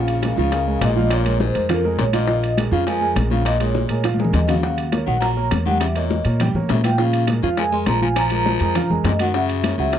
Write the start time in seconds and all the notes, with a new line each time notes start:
Already playing: A#1 C#3 F3 F4 F5
0.08 high conga, high timbale
0.23 G#3 G#4 A#4, high bongo, high conga, high timbale
0.37 C#2 C#3 F3 F4 F5, high conga
0.52 G#3 G#4 A#4, high bongo, high conga, high timbale
0.67 G#3 G#4 A#4, high conga
0.81 A#1 A#2 D#5, high bongo, low bongo, high conga, high timbale, low timbale
0.96 F3 F4 F5, high conga
1.11 A#2, high bongo, high timbale
1.25 G#3 G#4 A#4, high bongo, high conga, high timbale
1.40 G#2 C5, high bongo, high conga
1.55 F2 G#3 G#4 A#4, high bongo, high timbale
1.69 F2 F3 F4 A#4 F5, high bongo, high conga, low conga, high timbale
1.84 G#3 G#4 A#4, high bongo
1.98 A#1 A#2 C#5, high bongo, low bongo, high conga, high timbale
2.13 A#2 F3 F4 D#5 F5, high conga, high timbale
2.28 F3 F4 F5, high bongo, high conga
2.43 high conga, high timbale
2.57 G#3 G#4 A#4, high bongo, high conga, high timbale
2.71 F2 C#3 F3 F4 F5
2.86 F3 G#3 G#4 A#4 G#5, high bongo, high conga, high timbale
3.01 G#3 G#4 A#4, high conga
3.15 A#1, high bongo, low bongo, high conga, high timbale
3.31 C#3 F3 F4 F5, high conga
3.45 A#2 D#5, high bongo, high conga, high timbale
3.60 A#2 G#3 G#4 A#4 C#5, high bongo, high conga, high timbale
3.75 high bongo, high conga
3.89 A#2 G#3 G#4 A#4, high bongo, high timbale
4.04 F3 F4 F5, high bongo, high conga, high timbale
4.14 high conga
4.19 G#3 G#4 A#4, high bongo
4.24 low conga
4.33 D#2 A#2 D#5, low bongo, low conga, high timbale
4.44 C#3, low conga
4.48 F#3 F#4 F5 F#5, low bongo, high timbale
4.54 low conga
4.63 F#3 F#4 F#5, high bongo, high conga
4.78 high conga, high timbale
4.92 A#3 A#4 C#5, high bongo, high conga, high timbale
5.06 A#1 D#3 F#3 F#4 F#5, high conga
5.20 F#3 A#3 A#4 C#5 A#5, high bongo, high conga, high timbale
5.37 A#3 A#4 C#5, high conga
5.51 E2, high bongo, low bongo, high conga, high timbale
5.66 D#3 G3 G4 F#5 G5, high conga
5.80 C#3 E5, high bongo, high timbale
5.95 A#2 A#3 A#4 C#5 D#5, high bongo, high conga, high timbale
6.11 high bongo, high conga
6.25 A#2 A#3 A#4 C#5, high bongo, high timbale
6.40 G3 G4 G5, high bongo, high conga, low conga, high timbale
6.54 A2 A#3 A#4 C#5, high bongo, high conga, low conga
6.69 A#2 C#3 E5, high bongo, low bongo, high conga, high timbale, low timbale
6.83 E3 F3 F4 F5 G5, high conga, high timbale
6.98 C#3 F3 F4 F5, high bongo, high conga
7.13 high conga, high timbale
7.27 G#3 G#4 A#4, high bongo, high conga, high timbale
7.42 F2 C#3 F3 F4 F5, high conga
7.57 F3 G#3 G#4 A#4 G#5, high bongo, high conga, high timbale
7.72 G#3 G#4 A#4 C6, high conga
7.86 A#1 F3 A#5, high bongo, low bongo, high conga, high timbale
8.01 F3 F4 F5 G#5, high conga
8.16 F3 A#5, high bongo, high conga, high timbale
8.30 G#3 G#4 A#4, high bongo, high conga, high timbale
8.46 high bongo, high conga
8.60 F2 G#3 G#4 A#4, high bongo, high timbale
8.75 F3 F4 F5, high bongo, high conga, low conga, high timbale
8.90 F2 G#3 G#4 A#4, high bongo, high conga, low conga
9.04 F#2 A#2 D#5, high bongo, low bongo, high conga, high timbale, low timbale
9.19 D#3 F#3 F#4 F#5, high conga, high timbale
9.34 C#3 F#3 F#4 E5 F#5, high bongo, high conga
9.49 high conga, high timbale
9.64 A#3 A#4 C#5, high bongo, high conga, high timbale
9.78 C#2 C#3 F#3 F#4 E5 F#5, high conga
9.93 A#3 A#4 C#5, high bongo, high conga, high timbale